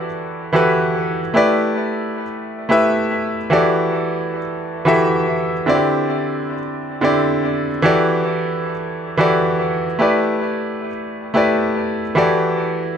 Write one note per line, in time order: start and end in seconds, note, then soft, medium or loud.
0.00 0.53 E3 medium
0.00 0.53 E4 medium
0.00 0.54 F#4 medium
0.00 0.54 G4 medium
0.00 0.55 A4 medium
0.00 1.36 D5 loud
0.53 1.20 E3 medium
0.53 1.20 E4 medium
0.53 1.20 F#4 medium
0.53 1.21 G4 medium
0.53 1.21 A4 medium
0.53 1.21 B4 loud
1.34 2.21 A3 medium
1.34 2.22 E4 medium
1.34 2.22 G4 medium
1.34 2.23 B4 medium
1.34 2.23 D5 loud
2.69 3.36 A3 medium
2.69 3.36 E4 medium
2.69 3.37 G4 medium
2.69 3.37 B4 medium
2.69 3.37 E5 loud
3.50 4.38 E3 medium
3.50 4.38 E4 medium
3.50 4.38 F#4 medium
3.50 4.39 G4 medium
3.50 4.39 A4 medium
3.50 4.39 D5 loud
4.85 5.52 E3 medium
4.85 5.52 E4 medium
4.85 5.53 F#4 medium
4.85 5.53 G4 medium
4.85 5.53 A4 medium
4.85 5.54 E5 medium
5.66 6.54 D3 medium
5.66 6.54 C4 medium
5.66 6.55 E4 medium
5.66 5.75 F#4 medium
5.66 6.56 D5 loud
5.75 6.58 G4 medium
7.01 7.68 D3 medium
7.01 7.69 C4 medium
7.01 7.69 E4 medium
7.01 7.69 G4 medium
7.01 7.70 D5 loud
7.82 8.70 E3 medium
7.82 8.70 E4 medium
7.82 8.71 F#4 medium
7.82 8.71 G4 medium
7.82 8.71 A4 medium
7.82 8.72 D5 loud
9.17 9.84 E3 medium
9.17 9.85 E4 medium
9.17 9.85 F#4 medium
9.17 9.85 G4 medium
9.17 9.86 A4 medium
9.17 9.86 D5 loud
9.99 10.86 A3 medium
9.99 10.87 E4 medium
9.99 10.87 G4 medium
9.99 10.88 B4 medium
9.99 10.88 D5 medium
11.34 12.01 A3 medium
11.34 12.01 E4 medium
11.34 12.02 G4 medium
11.34 12.02 B4 medium
11.34 12.02 D5 medium
12.15 12.97 E3 medium
12.15 12.97 E4 medium
12.15 12.97 F#4 medium
12.15 12.97 G4 medium
12.15 12.97 A4 medium
12.15 12.97 D5 loud